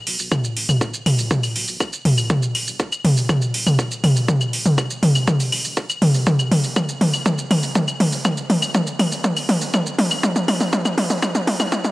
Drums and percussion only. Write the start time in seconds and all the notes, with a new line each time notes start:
0.07 open hi-hat
0.19 shaker
0.32 kick, mid tom, claves, shaker
0.44 shaker
0.57 open hi-hat
0.69 mid tom, claves, shaker
0.81 kick, shaker
0.94 shaker
1.06 open hi-hat, mid tom, claves
1.19 shaker
1.31 kick, mid tom, shaker
1.43 open hi-hat, claves, shaker
1.56 open hi-hat
1.68 shaker
1.80 kick, claves, shaker
1.93 shaker
2.05 open hi-hat, mid tom
2.18 claves, shaker
2.30 kick, mid tom, shaker
2.43 shaker
2.55 open hi-hat, claves
2.67 shaker
2.80 kick, shaker
2.92 claves, shaker
3.04 open hi-hat, mid tom
3.17 shaker
3.29 kick, mid tom, claves, shaker
3.42 shaker
3.54 open hi-hat
3.67 mid tom, claves, shaker
3.79 kick, shaker
3.91 shaker
4.04 open hi-hat, mid tom, claves
4.16 shaker
4.28 kick, mid tom, shaker
4.41 claves, shaker
4.53 open hi-hat
4.66 mid tom, shaker
4.78 kick, claves, shaker
4.90 shaker
5.03 open hi-hat, mid tom
5.15 claves, shaker
5.27 kick, mid tom, shaker
5.40 open hi-hat, shaker
5.52 open hi-hat, claves
5.65 shaker
5.77 kick, shaker
5.90 claves, shaker
6.02 open hi-hat, mid tom
6.14 shaker
6.27 kick, mid tom, shaker
6.39 claves, shaker
6.52 open hi-hat, mid tom
6.64 shaker
6.76 kick, mid tom, claves, shaker
6.89 shaker
7.01 open hi-hat, mid tom
7.14 claves, shaker
7.26 kick, mid tom, shaker
7.38 shaker
7.51 open hi-hat, mid tom, claves
7.63 shaker
7.75 kick, mid tom, shaker
7.88 claves, shaker
8.00 open hi-hat, mid tom
8.13 shaker
8.25 kick, mid tom, claves, shaker
8.38 shaker
8.50 open hi-hat, mid tom
8.62 claves, shaker
8.75 kick, mid tom, shaker
8.87 shaker
8.99 open hi-hat, mid tom, claves
9.12 shaker
9.24 kick, mid tom, shaker
9.37 open hi-hat, claves, shaker
9.49 open hi-hat, mid tom
9.61 shaker
9.74 kick, mid tom, claves, shaker
9.86 shaker
9.99 open hi-hat, mid tom
10.11 claves, shaker
10.23 kick, mid tom, shaker
10.36 mid tom, shaker
10.48 open hi-hat, mid tom, claves
10.61 mid tom, shaker
10.73 kick, mid tom, shaker
10.85 mid tom, claves, shaker
10.98 open hi-hat, mid tom
11.10 mid tom, shaker
11.23 kick, mid tom, claves, shaker
11.35 mid tom, shaker
11.47 open hi-hat, mid tom
11.60 mid tom, claves, shaker
11.72 kick, mid tom, shaker
11.85 mid tom, shaker